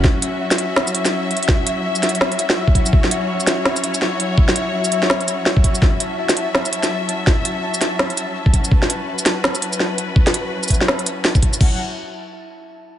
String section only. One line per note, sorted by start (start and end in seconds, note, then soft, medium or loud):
0.00 11.57 F#3 medium
0.00 11.57 C#4 medium
0.00 11.57 F#4 medium
0.04 2.92 E5 medium
2.93 5.82 C#5 medium
5.82 8.71 E5 medium
8.71 11.60 B4 medium
11.61 11.78 F#3 medium
11.61 11.78 C#4 medium
11.61 11.78 F#4 medium
11.61 11.78 F#5 medium